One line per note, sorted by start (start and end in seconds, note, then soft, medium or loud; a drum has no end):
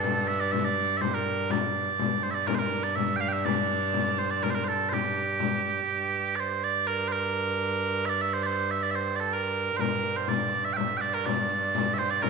0.00 1.99 G2 medium
0.00 0.28 A4 medium
0.00 frame drum medium
0.28 0.41 E5 loud
0.28 frame drum soft
0.41 0.52 D5 medium
0.52 0.65 E5 medium
0.52 frame drum medium
0.65 0.97 D5 medium
0.97 1.01 E5 medium
1.01 1.14 C5 medium
1.01 frame drum medium
1.14 1.51 A#4 medium
1.26 frame drum soft
1.50 2.23 D5 medium
1.50 frame drum medium
1.75 frame drum soft
1.99 5.90 G2 medium
1.99 frame drum medium
2.23 2.31 C5 medium
2.23 frame drum soft
2.31 2.47 D5 medium
2.31 2.35 E5 medium
2.47 2.55 A#4 medium
2.47 frame drum medium
2.55 2.59 C5 medium
2.59 2.83 A#4 medium
2.83 2.96 D5 medium
2.96 3.16 E5 medium
2.96 frame drum medium
3.16 3.20 G5 medium
3.20 3.28 F5 medium
3.20 frame drum soft
3.28 3.33 G5 medium
3.33 3.45 E5 medium
3.45 4.18 D5 medium
3.45 frame drum medium
3.94 frame drum medium
4.18 4.30 C5 medium
4.18 frame drum soft
4.30 4.43 D5 medium
4.42 4.50 A#4 medium
4.42 frame drum medium
4.50 4.55 C5 medium
4.55 4.64 A#4 medium
4.64 4.68 C5 medium
4.68 4.89 A4 medium
4.89 4.94 C5 medium
4.89 frame drum medium
4.94 6.36 G4 medium
5.17 frame drum soft
5.40 frame drum medium
5.66 frame drum soft
5.91 9.79 G2 medium
6.36 6.64 C5 medium
6.36 6.40 D5 medium
6.64 6.87 D5 loud
6.87 7.08 A#4 medium
7.08 7.12 C5 medium
7.12 8.06 A#4 medium
8.06 8.21 D5 loud
8.06 8.09 E5 loud
8.21 8.33 E5 medium
8.33 8.43 C5 medium
8.43 8.71 C5 medium
8.43 8.46 D5 medium
8.71 8.83 E5 medium
8.83 8.91 D5 medium
8.91 8.95 E5 medium
8.95 9.16 C5 medium
9.16 9.20 D5 medium
9.20 9.33 A4 medium
9.33 9.77 A#4 medium
9.77 12.30 G2 medium
9.77 10.17 A#4 medium
9.77 9.81 C5 medium
9.77 frame drum medium
10.04 frame drum soft
10.17 10.28 C5 medium
10.28 10.65 D5 medium
10.28 frame drum medium
10.65 10.73 E5 medium
10.73 10.97 E5 medium
10.73 10.77 G5 medium
10.77 frame drum medium
10.97 11.14 D5 medium
10.97 11.01 G5 medium
11.02 frame drum soft
11.14 11.26 A#4 medium
11.26 11.94 D5 medium
11.26 frame drum medium
11.75 frame drum medium
11.94 11.98 E5 loud
11.98 12.10 C5 loud
11.98 frame drum soft
12.10 12.22 D5 medium
12.22 12.30 A#4 medium
12.22 frame drum medium